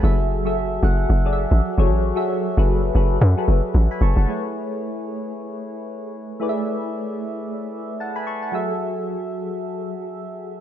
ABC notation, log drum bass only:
X:1
M:4/4
L:1/16
Q:"Swing 16ths" 1/4=113
K:F#m
V:1 name="Log drum bass" clef=bass
F,,,6 F,,,2 F,,,3 A,,, z F,,, A,,,2 | z3 F,,,3 F,,,2 F,, z F,,, z A,,, z F,,, F,,, | z16 | z16 |
z16 |]